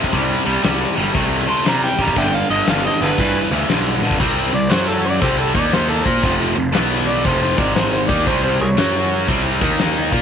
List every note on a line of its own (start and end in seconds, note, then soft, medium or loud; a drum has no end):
0.00 0.10 F2 medium
0.00 0.11 C3 medium
0.00 kick medium
0.12 0.33 C2 medium
0.12 0.42 C3 medium
0.12 0.42 G3 medium
0.12 kick medium
0.12 closed hi-hat medium
0.45 0.57 C2 medium
0.45 0.61 C3 medium
0.45 0.62 G3 medium
0.45 closed hi-hat medium
0.63 0.84 C2 medium
0.63 0.93 C3 medium
0.63 0.93 G3 medium
0.63 snare loud
0.63 closed hi-hat medium
0.96 1.08 G1 loud
0.96 1.12 C3 medium
0.96 1.13 G3 medium
0.96 closed hi-hat medium
1.14 1.46 C2 medium
1.14 1.44 C3 medium
1.14 1.44 A3 medium
1.14 kick loud
1.14 closed hi-hat medium
1.47 1.63 C3 medium
1.47 1.64 A3 medium
1.47 1.66 C6 medium
1.47 closed hi-hat medium
1.65 1.95 C3 medium
1.65 1.86 C3 medium
1.65 1.95 G3 medium
1.65 1.83 A#5 medium
1.65 snare medium
1.65 closed hi-hat medium
1.84 2.04 G5 medium
1.98 2.10 A1 medium
1.98 2.15 C3 medium
1.98 2.15 G3 medium
1.98 2.17 A#5 medium
1.98 kick medium
1.98 closed hi-hat medium
2.08 kick medium
2.16 2.37 G1 loud
2.16 2.46 G2 medium
2.16 2.46 D3 loud
2.16 2.26 D5 medium
2.16 2.25 E5 medium
2.16 2.37 G5 medium
2.16 kick loud
2.16 closed hi-hat medium
2.35 2.50 F5 loud
2.49 2.61 G1 medium
2.49 2.65 G2 medium
2.49 2.66 D3 medium
2.49 2.67 D#5 medium
2.49 closed hi-hat medium
2.67 2.87 G1 medium
2.67 2.97 G2 medium
2.67 2.98 D3 medium
2.67 2.85 F5 medium
2.67 snare loud
2.67 closed hi-hat medium
2.86 3.01 D#5 medium
3.00 3.11 G1 loud
3.00 3.17 G2 medium
3.00 3.17 D3 medium
3.00 3.11 E4 medium
3.00 3.10 G#4 medium
3.00 3.51 B4 medium
3.00 closed hi-hat medium
3.18 3.48 G2 medium
3.18 3.39 G2 medium
3.18 3.48 E3 medium
3.18 kick loud
3.18 closed hi-hat loud
3.51 3.62 D2 medium
3.51 3.67 G2 medium
3.51 3.68 E3 medium
3.51 closed hi-hat medium
3.69 4.00 B1 medium
3.69 3.99 G2 medium
3.69 3.99 D3 medium
3.69 snare medium
3.69 closed hi-hat medium
4.02 4.18 G2 medium
4.02 4.19 D3 medium
4.02 high tom medium
4.11 kick medium
4.20 4.51 C2 medium
4.20 4.51 C3 medium
4.20 4.51 G3 loud
4.20 4.52 C4 loud
4.20 kick loud
4.20 crash loud
4.52 4.70 C2 medium
4.52 4.67 C3 medium
4.52 4.67 G3 medium
4.52 4.72 D5 medium
4.70 5.18 F#2 loud
4.70 5.20 F#3 medium
4.70 5.21 C#4 medium
4.70 5.21 F#4 medium
4.70 4.87 C5 loud
4.70 snare loud
4.70 open hi-hat medium
4.88 5.04 A4 medium
5.05 5.21 D5 loud
5.21 5.53 C2 medium
5.21 5.53 C3 medium
5.21 5.53 G3 medium
5.21 5.53 C4 medium
5.21 5.28 G4 medium
5.21 5.28 A4 medium
5.21 5.40 C5 medium
5.21 kick loud
5.21 open hi-hat medium
5.38 5.54 A4 medium
5.54 6.02 D#2 medium
5.54 6.04 D#3 medium
5.54 6.04 A#3 medium
5.54 6.04 D#4 medium
5.54 5.71 D5 medium
5.54 kick loud
5.73 5.89 C5 loud
5.73 snare medium
5.73 open hi-hat soft
5.89 6.08 A4 medium
6.05 6.22 A#2 medium
6.05 6.22 A#3 medium
6.05 6.22 F4 medium
6.05 6.23 A#4 medium
6.05 6.33 C5 medium
6.05 kick loud
6.22 6.54 F1 loud
6.22 6.54 F2 loud
6.22 6.54 C3 loud
6.22 6.55 F3 loud
6.22 kick loud
6.22 open hi-hat medium
6.55 6.73 F1 medium
6.55 6.70 F2 medium
6.55 6.70 C3 medium
6.73 7.22 B1 medium
6.73 7.24 B2 medium
6.73 7.24 F#3 medium
6.73 7.24 B3 medium
6.73 snare loud
6.73 open hi-hat medium
7.08 7.27 D5 loud
7.24 7.56 F1 medium
7.24 7.57 F2 medium
7.24 7.57 C3 medium
7.24 7.57 F3 loud
7.24 7.41 C5 medium
7.24 kick loud
7.24 open hi-hat medium
7.42 7.61 C5 medium
7.57 8.05 G#1 loud
7.57 8.07 G#2 loud
7.57 8.07 D#3 medium
7.57 8.08 G#3 medium
7.57 7.75 D5 medium
7.57 kick loud
7.75 7.92 C5 loud
7.75 snare medium
7.75 open hi-hat medium
7.92 8.10 C5 medium
8.09 8.26 D#2 medium
8.09 8.26 D#3 medium
8.09 8.26 A#3 medium
8.09 8.26 D#4 medium
8.09 8.28 D5 medium
8.09 kick loud
8.26 8.58 C2 loud
8.26 8.58 C3 loud
8.26 8.59 G3 loud
8.26 8.59 C4 loud
8.26 8.43 C5 medium
8.26 kick loud
8.26 open hi-hat medium
8.44 8.60 C5 medium
8.59 8.77 C2 medium
8.59 8.74 C3 medium
8.59 8.74 G3 medium
8.59 8.69 G#4 medium
8.59 8.68 A#4 medium
8.59 9.26 C#5 medium
8.77 9.25 F#2 medium
8.77 9.28 F#3 medium
8.77 9.28 C#4 loud
8.77 9.28 F#4 medium
8.77 snare loud
8.77 open hi-hat medium
9.28 9.59 C2 medium
9.28 9.60 C3 medium
9.28 9.60 G3 loud
9.28 9.60 C4 medium
9.28 kick loud
9.28 open hi-hat medium
9.61 10.09 D#2 loud
9.61 10.11 D#3 medium
9.61 10.11 A#3 medium
9.61 10.12 D#4 medium
9.61 kick loud
9.79 snare medium
9.79 open hi-hat soft
10.12 10.22 A#2 medium
10.12 10.22 A#3 medium
10.12 10.22 F4 medium
10.12 10.22 A#4 loud
10.12 kick loud